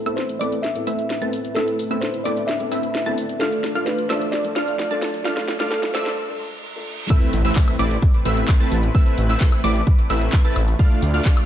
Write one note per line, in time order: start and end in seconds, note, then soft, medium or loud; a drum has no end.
0.00 3.37 A3 medium
0.00 1.54 E4 medium
0.00 0.18 A4 loud
0.00 3.37 B4 medium
0.00 riser medium
0.06 0.38 A3 medium
0.06 0.23 B3 medium
0.06 0.23 C4 medium
0.06 0.38 C4 medium
0.06 0.38 E4 medium
0.06 0.23 E4 medium
0.06 0.24 A4 medium
0.06 0.38 B4 medium
0.06 0.38 E5 loud
0.06 0.38 E6 loud
0.06 closed hi-hat soft
0.06 shaker soft
0.16 0.41 C5 loud
0.16 snare soft
0.16 closed hi-hat medium
0.16 shaker soft
0.29 closed hi-hat soft
0.39 0.58 A3 medium
0.39 0.72 B3 medium
0.39 0.73 C4 medium
0.39 0.58 C4 medium
0.39 0.58 E4 medium
0.39 0.73 E4 medium
0.39 0.73 A4 medium
0.39 0.58 B4 medium
0.39 0.62 D5 loud
0.39 0.58 D5 loud
0.39 0.58 D6 loud
0.39 open hi-hat loud
0.39 shaker medium
0.52 closed hi-hat soft
0.52 shaker soft
0.62 1.58 E5 loud
0.62 snare soft
0.62 closed hi-hat medium
0.62 shaker soft
0.75 0.92 B3 medium
0.75 0.92 C4 medium
0.75 0.93 E4 medium
0.75 0.93 A4 medium
0.75 closed hi-hat soft
0.87 1.19 A3 medium
0.87 1.19 C4 medium
0.87 1.19 E4 medium
0.87 1.19 B4 medium
0.87 1.19 E5 loud
0.87 1.19 E6 loud
0.87 open hi-hat loud
0.87 shaker medium
0.99 closed hi-hat soft
0.99 shaker soft
1.10 snare medium
1.10 closed hi-hat medium
1.10 shaker soft
1.21 1.39 A3 medium
1.21 1.53 B3 medium
1.21 1.53 C4 medium
1.21 1.39 C4 medium
1.21 1.39 E4 medium
1.21 1.54 E4 medium
1.21 1.54 A4 medium
1.21 1.39 B4 medium
1.21 1.39 A5 medium
1.21 1.39 A6 medium
1.21 closed hi-hat soft
1.33 open hi-hat loud
1.33 shaker medium
1.45 closed hi-hat soft
1.45 shaker soft
1.55 1.88 A3 medium
1.55 1.88 C4 medium
1.55 6.14 D4 medium
1.55 1.88 E4 medium
1.55 1.98 A4 loud
1.55 1.88 A4 medium
1.55 1.88 B4 medium
1.55 1.88 E5 medium
1.55 1.88 E6 medium
1.55 snare medium
1.55 closed hi-hat medium
1.55 shaker soft
1.68 closed hi-hat soft
1.79 open hi-hat loud
1.79 shaker medium
1.90 2.23 A3 medium
1.90 2.08 B3 medium
1.90 2.08 C4 medium
1.90 2.23 C4 medium
1.90 2.23 E4 medium
1.90 2.08 E4 medium
1.90 2.08 A4 medium
1.90 2.23 B4 medium
1.90 2.23 E5 loud
1.90 2.23 E6 loud
1.90 closed hi-hat soft
1.90 shaker soft
2.01 2.25 C5 loud
2.01 snare medium
2.01 closed hi-hat medium
2.01 shaker soft
2.14 closed hi-hat soft
2.24 2.43 A3 loud
2.24 2.57 B3 medium
2.24 2.57 C4 medium
2.24 2.43 C4 medium
2.24 2.43 E4 medium
2.24 2.57 E4 medium
2.24 2.58 A4 loud
2.24 2.43 B4 medium
2.24 2.49 D5 medium
2.24 2.43 D5 loud
2.24 2.43 D6 loud
2.24 open hi-hat loud
2.24 shaker medium
2.37 closed hi-hat soft
2.37 shaker soft
2.47 3.43 E5 loud
2.47 snare medium
2.47 closed hi-hat medium
2.47 shaker soft
2.59 2.77 B3 medium
2.59 2.77 C4 medium
2.59 2.77 E4 medium
2.59 2.77 A4 medium
2.59 closed hi-hat soft
2.72 3.04 A3 medium
2.72 3.04 C4 medium
2.72 3.03 E4 medium
2.72 3.04 B4 medium
2.72 3.03 E5 loud
2.72 3.03 E6 loud
2.72 open hi-hat loud
2.72 shaker medium
2.83 closed hi-hat soft
2.83 shaker soft
2.95 snare medium
2.95 open hi-hat medium
2.95 shaker soft
3.06 3.24 A3 medium
3.06 3.38 B3 medium
3.06 3.38 C4 medium
3.06 3.24 C4 medium
3.06 3.24 E4 medium
3.06 3.38 E4 medium
3.06 3.38 A4 medium
3.06 3.24 B4 medium
3.06 3.24 A5 medium
3.06 3.24 A6 medium
3.06 closed hi-hat soft
3.18 open hi-hat loud
3.18 shaker medium
3.29 closed hi-hat soft
3.29 shaker soft
3.40 3.72 A3 medium
3.40 3.73 A3 medium
3.40 6.15 A3 medium
3.40 3.73 D4 medium
3.40 3.73 F4 medium
3.40 6.15 F4 medium
3.40 3.73 F4 medium
3.40 3.88 A4 loud
3.40 3.73 A4 medium
3.40 3.73 D5 medium
3.40 6.15 D5 medium
3.40 3.73 F5 loud
3.40 3.73 F6 medium
3.40 snare medium
3.40 closed hi-hat medium
3.40 shaker soft
3.52 closed hi-hat soft
3.64 snare medium
3.64 open hi-hat loud
3.64 shaker medium
3.75 3.92 A3 medium
3.75 4.07 A3 medium
3.75 3.92 D4 medium
3.75 4.07 D4 medium
3.75 4.07 F4 medium
3.75 3.93 F4 medium
3.75 3.93 A4 medium
3.75 4.07 D5 medium
3.75 4.07 F5 loud
3.75 4.07 F6 loud
3.75 closed hi-hat soft
3.75 shaker soft
3.86 4.10 B4 loud
3.86 snare medium
3.86 closed hi-hat medium
3.86 shaker soft
3.98 closed hi-hat soft
4.09 4.42 A3 medium
4.09 4.28 A3 loud
4.09 4.42 D4 medium
4.09 4.28 D4 medium
4.09 4.28 F4 medium
4.09 4.42 F4 medium
4.09 4.42 A4 loud
4.09 4.33 C5 medium
4.09 4.28 D5 medium
4.09 4.28 E5 loud
4.09 4.28 E6 loud
4.09 snare medium
4.09 open hi-hat loud
4.09 shaker medium
4.21 closed hi-hat soft
4.21 shaker soft
4.32 5.28 D5 loud
4.32 snare medium
4.32 closed hi-hat medium
4.32 shaker soft
4.44 4.61 A3 medium
4.44 4.62 D4 medium
4.44 4.62 F4 medium
4.44 4.62 A4 medium
4.44 closed hi-hat soft
4.56 4.88 A3 medium
4.56 4.88 D4 medium
4.56 4.88 F4 medium
4.56 4.88 D5 medium
4.56 4.88 F5 loud
4.56 4.88 F6 loud
4.56 snare medium
4.56 open hi-hat loud
4.56 shaker medium
4.68 closed hi-hat soft
4.68 shaker soft
4.79 snare medium
4.79 closed hi-hat medium
4.79 shaker soft
4.90 5.22 A3 medium
4.90 5.08 A3 medium
4.90 5.23 D4 medium
4.90 5.08 D4 medium
4.90 5.08 F4 medium
4.90 5.23 F4 medium
4.90 5.23 A4 medium
4.90 5.08 D5 medium
4.90 5.08 A5 medium
4.90 5.08 A6 medium
4.90 closed hi-hat soft
5.02 snare medium
5.02 open hi-hat loud
5.02 shaker medium
5.14 closed hi-hat soft
5.14 shaker soft
5.24 5.57 A3 medium
5.24 5.57 D4 medium
5.24 5.72 F4 medium
5.24 5.57 F4 medium
5.24 5.58 A4 loud
5.24 5.57 D5 medium
5.24 5.57 F5 loud
5.24 5.57 F6 medium
5.24 snare medium
5.24 closed hi-hat medium
5.24 shaker soft
5.37 snare medium
5.37 closed hi-hat soft
5.48 snare loud
5.48 open hi-hat loud
5.48 shaker medium
5.59 5.77 A3 medium
5.59 5.92 A3 medium
5.59 5.77 D4 medium
5.59 5.92 D4 medium
5.59 5.92 F4 medium
5.59 5.77 F4 medium
5.59 5.77 A4 loud
5.59 5.92 D5 medium
5.59 5.92 F5 loud
5.59 5.92 F6 loud
5.59 snare medium
5.59 closed hi-hat soft
5.59 shaker soft
5.70 5.95 A4 medium
5.70 snare medium
5.70 closed hi-hat medium
5.70 shaker soft
5.83 snare medium
5.83 closed hi-hat soft
5.94 6.26 A3 medium
5.94 6.12 A3 loud
5.94 6.26 D4 medium
5.94 6.12 D4 medium
5.94 6.12 F4 medium
5.94 6.27 F4 medium
5.94 6.27 A4 loud
5.94 6.18 C5 medium
5.94 6.12 D5 medium
5.94 6.12 E5 loud
5.94 6.12 E6 loud
5.94 snare loud
5.94 open hi-hat loud
5.94 shaker medium
6.06 snare medium
6.06 closed hi-hat soft
6.06 shaker soft
6.18 reverse cymbal medium
6.29 6.46 A3 medium
6.29 6.46 D4 medium
6.29 6.46 F4 medium
6.29 6.47 A4 medium
6.75 7.07 A3 medium
6.75 7.07 D4 medium
6.75 7.07 F4 medium
6.75 7.08 A4 medium
7.10 7.42 A3 medium
7.10 11.46 A3 medium
7.10 7.42 C4 medium
7.10 10.76 C4 medium
7.10 7.42 E4 medium
7.10 10.76 E4 medium
7.10 7.42 B4 medium
7.10 10.76 B4 medium
7.10 7.42 E5 loud
7.10 7.42 E6 medium
7.10 kick loud
7.10 closed hi-hat medium
7.10 crash loud
7.10 impact medium
7.10 shaker soft
7.22 closed hi-hat soft
7.33 7.51 A1 loud
7.33 open hi-hat loud
7.33 shaker medium
7.45 7.77 A3 medium
7.45 7.77 C4 medium
7.45 7.77 E4 medium
7.45 7.77 B4 medium
7.45 7.77 E5 loud
7.45 7.77 E6 loud
7.45 closed hi-hat soft
7.45 shaker soft
7.56 kick loud
7.56 clap loud
7.56 closed hi-hat medium
7.56 shaker soft
7.68 closed hi-hat soft
7.68 high woodblock medium
7.79 7.98 A1 medium
7.79 7.97 A3 loud
7.79 7.97 C4 medium
7.79 7.97 E4 medium
7.79 7.97 B4 medium
7.79 7.97 D5 loud
7.79 7.97 D6 loud
7.79 open hi-hat loud
7.79 shaker medium
7.91 closed hi-hat soft
7.91 shaker soft
8.02 kick loud
8.02 closed hi-hat medium
8.02 shaker soft
8.14 closed hi-hat soft
8.25 8.44 A1 medium
8.25 8.57 A3 medium
8.25 8.57 C4 medium
8.25 8.57 E4 medium
8.25 8.57 B4 medium
8.25 8.57 E5 loud
8.25 8.57 E6 loud
8.25 open hi-hat loud
8.25 shaker medium
8.37 closed hi-hat soft
8.37 shaker soft
8.48 kick loud
8.48 clap loud
8.48 closed hi-hat medium
8.48 high woodblock medium
8.48 shaker soft
8.60 8.78 A3 medium
8.60 8.78 C4 medium
8.60 8.78 E4 medium
8.60 8.78 B4 medium
8.60 8.78 A5 medium
8.60 8.78 A6 loud
8.60 closed hi-hat soft
8.72 8.90 A1 loud
8.72 open hi-hat loud
8.72 shaker medium
8.83 closed hi-hat soft
8.83 shaker soft
8.95 9.27 A3 medium
8.95 9.27 C4 medium
8.95 9.27 E4 medium
8.95 9.27 B4 medium
8.95 9.27 E5 medium
8.95 9.27 E6 medium
8.95 kick loud
8.95 closed hi-hat medium
8.95 shaker soft
9.06 closed hi-hat soft
9.18 9.36 A1 loud
9.18 open hi-hat loud
9.18 shaker medium
9.29 9.61 A3 medium
9.29 9.61 C4 medium
9.29 9.61 E4 medium
9.29 9.61 B4 medium
9.29 9.61 E5 loud
9.29 9.61 E6 loud
9.29 closed hi-hat soft
9.29 shaker soft
9.41 kick loud
9.41 clap loud
9.41 closed hi-hat medium
9.41 shaker soft
9.52 closed hi-hat soft
9.52 high woodblock medium
9.64 9.82 A1 medium
9.64 9.81 A3 loud
9.64 9.81 C4 medium
9.64 9.81 E4 medium
9.64 9.81 B4 medium
9.64 9.81 D5 loud
9.64 9.82 D6 loud
9.64 open hi-hat loud
9.64 shaker medium
9.75 closed hi-hat soft
9.75 shaker soft
9.87 kick loud
9.87 closed hi-hat medium
9.87 shaker soft
9.99 closed hi-hat soft
10.10 10.28 A1 medium
10.10 10.42 A3 medium
10.10 10.42 C4 medium
10.10 10.42 E4 medium
10.10 10.42 B4 medium
10.10 10.42 E5 loud
10.10 10.42 E6 loud
10.10 open hi-hat loud
10.10 shaker medium
10.22 closed hi-hat soft
10.22 shaker soft
10.33 kick loud
10.33 clap loud
10.33 open hi-hat medium
10.33 shaker soft
10.45 10.62 A3 medium
10.45 10.62 C4 medium
10.45 10.62 E4 medium
10.45 10.62 B4 medium
10.45 10.62 A5 medium
10.45 10.62 A6 loud
10.45 closed hi-hat soft
10.56 10.75 A1 loud
10.56 open hi-hat loud
10.56 high woodblock medium
10.56 shaker medium
10.68 closed hi-hat soft
10.68 shaker soft
10.79 11.11 A3 medium
10.79 11.11 D4 medium
10.79 11.46 D4 medium
10.79 11.11 F4 medium
10.79 11.46 F4 medium
10.79 11.11 D5 medium
10.79 11.46 D5 medium
10.79 11.11 F5 medium
10.79 11.11 F6 medium
10.79 kick loud
10.79 closed hi-hat medium
10.79 shaker soft
10.91 closed hi-hat soft
11.02 11.21 D2 loud
11.02 open hi-hat loud
11.02 shaker medium
11.14 11.46 A3 medium
11.14 11.46 D4 medium
11.14 11.46 F4 medium
11.14 11.46 D5 medium
11.14 11.46 F5 loud
11.14 11.46 F6 loud
11.14 closed hi-hat soft
11.14 shaker soft
11.25 kick loud
11.25 clap loud
11.25 closed hi-hat medium
11.25 shaker soft
11.37 closed hi-hat soft
11.37 high woodblock medium